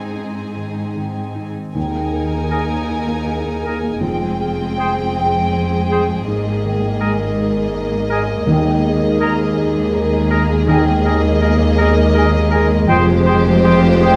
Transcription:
Already playing: G#2 G#3 C4 D#4 G#4 G#5
0.15 C4 G#4
0.55 D#3 C4
0.95 D#3 C4
1.35 C4 D#4
1.74 D#2 D#3 A#3 D#4 G#4 A#4 G#5
1.93 A#3
2.13 A#3 A#4
2.33 A#3
2.51 D#4 G#4 A#4 G#5
2.70 A#3
2.90 D#4 G#4
3.07 A#3
3.26 G#4 A#4
3.45 A#3
3.63 D#4 G#4 A#4 G#5
3.83 A#3
4.01 F1 F2 F3 G#3 C4 G#4 G5
4.21 G#3
4.40 F4 G#4
4.59 G#3
4.77 G#3 G#4 C5 G5
4.97 G#3
5.16 G5
5.35 G#3
5.53 C5
5.72 G#3
5.87 G#3 G#4 G5
5.92 C5
6.09 G#3
6.25 G#1 G#2 A#3 A#4 D#5
6.45 G#3
6.63 D#3 G#4
6.82 G#3
7.00 G#3 G#4 A#4 G#5
7.19 G#3
7.37 G#4
7.57 G#3
7.74 A#4
7.92 G#3
8.10 G#3 G#4 A#4 G#5
8.29 G#3
8.46 D#2 D#3 G#3 G#4
8.66 G#3
8.84 D#4 G#4
9.01 G#3
9.20 G#3 G#4 A#4 A#5
9.39 G#3
9.56 G#4
9.75 G#3
9.94 A#4
10.12 G#3
10.30 G#3 G#4 A#4 A#5
10.48 G#3
10.67 D#2 D#3 G#3 A#3 G#4 A#4 D#5 G#5
10.87 G#3
11.05 D#4 G#4 A#4 G#5
11.23 G#3
11.40 G#3 G#4 A#4 G#5
11.61 G#3
11.78 G#4 A#4 G#5
11.98 G#3
12.14 G#4 A#4 G#5
12.35 G#3
12.51 G#3 G#4 A#4 G#5
12.71 G#3
12.88 F1 F2 F3 G#3 F4 G4 G#4 C5 G5
13.10 G#3
13.26 G#3 G#4 C5 G5
13.46 G#3
13.64 F4 G#4 C5 G5
13.83 G#3
14.01 F4 G#4 C5 G5

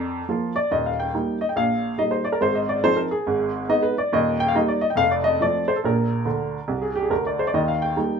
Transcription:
Already playing: F2 A#4 D5
0.29 F3 A#3 F4
0.56 D5
0.71 D#1 D#2 D#5
0.86 F5
1.00 G5
1.14 G3 A#3 D#4
1.41 D#5
1.49 G5
1.56 A#1 A#2 F5
1.98 G3 A#3 D#4 D#5
2.11 C5
2.24 D5
2.32 A#4
2.41 G#1 G#2 C5
2.55 D#5
2.69 D5
2.84 F3 C4 D#4 C5
2.96 A#4
3.11 G#4
3.27 G#1 G#2
3.69 G#3 B3 D#4 D#5
3.82 B4
3.98 D5
4.13 D#1 D#2 D#5
4.40 G5
4.48 F5
4.55 G3 A#3 D#4 D#5
4.68 D5
4.81 D#5
4.90 G5
4.96 F1 F2 F5
5.11 D5
5.24 D#5
5.41 F3 A3 C4 D5
5.68 C5
5.76 A4
5.84 A#1 A#2 A#4
6.25 D2 D3
6.68 C2 C3
6.82 G#4
6.96 G4
7.02 G#4
7.10 D2 D3 A#4
7.26 D5
7.39 C5
7.47 D5
7.54 D#2 D#3 D#5
7.68 F5
7.82 G5
7.96 G3 A#3 D#4

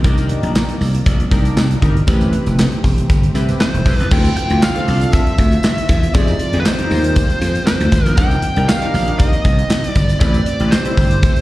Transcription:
Already playing: D#3
0.03 C2 C3 A#3 D4 D#4 G4 A#4 D5, kick, closed hi-hat, tambourine
0.17 closed hi-hat, tambourine
0.29 closed hi-hat
0.43 A#1, closed hi-hat
0.55 snare, clap, tambourine
0.69 closed hi-hat
0.81 C2, open hi-hat, tambourine
0.94 closed hi-hat
1.06 A#1, kick, closed hi-hat, tambourine
1.20 closed hi-hat
1.31 C2 D4 D#4 G4 A#4, kick, closed hi-hat, tambourine
1.45 closed hi-hat, tambourine
1.56 C2, snare, clap, tambourine
1.71 closed hi-hat
1.81 G1 D4 D#4 G4 A#4, kick, closed hi-hat, tambourine
1.97 closed hi-hat
2.07 A1 C3 A3 C4 E4 G4 B4, kick, closed hi-hat, tambourine
2.21 closed hi-hat, tambourine
2.33 closed hi-hat
2.46 F1, closed hi-hat, tambourine
2.59 snare, clap, tambourine
2.72 closed hi-hat
2.84 E1, kick, open hi-hat, tambourine
2.98 closed hi-hat
3.09 G1, kick, closed hi-hat, tambourine
3.23 closed hi-hat
3.34 C2 C4 E4 G4 B4, closed hi-hat, tambourine
3.48 closed hi-hat, tambourine
3.60 C5, snare, clap, tambourine
3.74 E1, closed hi-hat
3.85 B1 C4 E4 G4 B4, kick, open hi-hat, tambourine
4.00 C2 B4, closed hi-hat
4.11 D2 D3 F3 C4 E4 F4 A4 G5, kick, crash, tambourine
4.25 closed hi-hat, tambourine
4.37 G5, closed hi-hat
4.50 D2 C4 E4 F4 G4, closed hi-hat
4.62 F5, snare, clap, tambourine
4.75 C4 D4 F4 A4, closed hi-hat
4.88 C2, open hi-hat, tambourine
5.01 closed hi-hat
5.13 E5, kick, closed hi-hat, tambourine
5.27 closed hi-hat
5.38 D2, kick, closed hi-hat, tambourine
5.52 closed hi-hat, tambourine
5.63 snare, clap, tambourine
5.78 closed hi-hat
5.89 E2, kick, closed hi-hat, tambourine
6.03 closed hi-hat
6.14 F2 D#3 G3 G#3 C4 D#4 F4 G4 G#4 D5, kick, closed hi-hat, tambourine
6.27 closed hi-hat, tambourine
6.39 closed hi-hat
6.53 F2 C4 D#4 G4 G#4, closed hi-hat
6.60 B4
6.65 C5, snare, clap, tambourine
6.78 C4 D#4 G4 A#4, closed hi-hat
6.90 D#2, open hi-hat, tambourine
7.04 closed hi-hat, tambourine
7.16 kick, closed hi-hat, tambourine
7.30 closed hi-hat
7.41 F2, closed hi-hat, tambourine
7.55 closed hi-hat, tambourine
7.67 C5, snare, clap, tambourine
7.80 D2, closed hi-hat
7.92 G#1, kick, closed hi-hat, tambourine
8.06 A#1, closed hi-hat, tambourine
8.17 C2 D#3 A#3 C4 D4 D#4 G4 A#4 G5, kick, closed hi-hat, tambourine
8.31 closed hi-hat, tambourine
8.42 closed hi-hat
8.56 C2 D4 D#4 G4 A#4, closed hi-hat
8.68 F5, snare, clap, tambourine
8.82 D4 D#4 G4 A#4, closed hi-hat
8.94 A#1, open hi-hat, tambourine
9.08 closed hi-hat
9.19 D#5, kick, closed hi-hat, tambourine
9.33 closed hi-hat
9.44 C2, kick, closed hi-hat, tambourine
9.59 closed hi-hat
9.70 snare, clap, tambourine
9.84 closed hi-hat
9.89 D5
9.95 G1, kick, closed hi-hat, tambourine
10.09 closed hi-hat, tambourine
10.20 A1 C3 A3 C4 E4 G4 B4 D5, kick, closed hi-hat, tambourine
10.34 closed hi-hat, tambourine
10.46 closed hi-hat
10.60 A1 C4 E4 G4 B4, closed hi-hat
10.71 C5, snare, clap, tambourine
10.85 C4 E4 G4 C5, closed hi-hat
10.97 G1, kick, open hi-hat, tambourine
11.11 closed hi-hat, tambourine
11.22 kick, closed hi-hat, tambourine
11.36 closed hi-hat

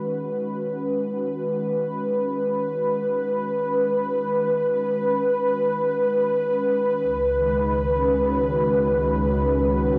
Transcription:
Already playing: D#3 G#3 C#4 F#4 B4
7.02 C#2
7.29 G#3
7.34 D#3
7.93 C#4
8.12 F#4

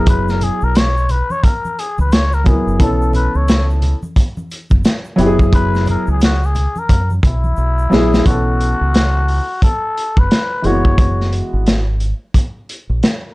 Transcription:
Already playing: F#1 F#3 B3 E4 G#4
0.06 B4, kick, closed hi-hat, shaker
0.28 A#4, snare, shaker
0.41 G#4, closed hi-hat, low conga, shaker
0.61 B1 A#4, shaker
0.75 C#5, snare, closed hi-hat, shaker
0.97 shaker
1.09 B4, closed hi-hat, low conga, shaker
1.30 C#5, high conga, shaker
1.44 A#4, kick, closed hi-hat, shaker
1.65 high conga, shaker
1.79 G#4, closed hi-hat, shaker
1.98 C#2 B4, high conga, shaker
2.12 C#5, snare, closed hi-hat, shaker
2.33 A#4, shaker
2.44 F#3 B3 E4 G#4, kick, closed hi-hat, high conga, low conga, shaker
2.48 A#4
2.67 F#1, shaker
2.78 B1 E3 B3 C#4 A4, kick, closed hi-hat, shaker
2.82 A4
3.02 shaker
3.13 B4, closed hi-hat, low conga, shaker
3.34 C#2 C#5, shaker
3.48 snare, closed hi-hat, shaker
3.70 shaker
3.82 closed hi-hat, low conga, shaker
4.03 high conga, shaker
4.16 kick, closed hi-hat, shaker
4.37 high conga, shaker
4.51 closed hi-hat, shaker
4.70 F#1, kick, high conga, shaker
4.84 snare, closed hi-hat, shaker
5.05 shaker
5.16 F#1 F#3 B3 E4 G4, closed hi-hat, high conga, low conga, shaker
5.26 G#4
5.39 kick, shaker
5.53 B4, kick, closed hi-hat, shaker
5.74 snare, shaker
5.86 closed hi-hat, low conga, shaker
5.90 A#4
6.07 C#2, shaker
6.12 G#4
6.20 F#4, snare, closed hi-hat, shaker
6.43 G#4, shaker
6.55 closed hi-hat, low conga, shaker
6.76 A#4, high conga, shaker
6.89 F#2, kick, closed hi-hat, high conga, shaker
7.10 high conga, shaker
7.23 B1 E4, kick, closed hi-hat, shaker
7.44 high conga, shaker
7.57 B1, shaker
7.78 shaker
7.90 A#1 F#3 B3 E4 G#4, snare, high conga, low conga, shaker
8.14 snare, shaker
8.25 B1 E3 B3 C#4 F#4 A4, kick, closed hi-hat
8.61 closed hi-hat
8.81 C#2
8.94 snare, closed hi-hat
9.28 open hi-hat
9.62 A4, kick, closed hi-hat
9.97 closed hi-hat
10.17 F#1 B4, kick
10.31 snare, closed hi-hat
10.62 F#1 E3 G#3 A#3 F#4 C#5, closed hi-hat
10.71 B3
10.85 kick
10.98 kick, closed hi-hat
11.21 snare
11.33 closed hi-hat
11.53 G#1
11.66 snare, closed hi-hat
12.00 closed hi-hat
12.34 kick, closed hi-hat
12.69 closed hi-hat
12.90 A#1
13.03 snare, closed hi-hat

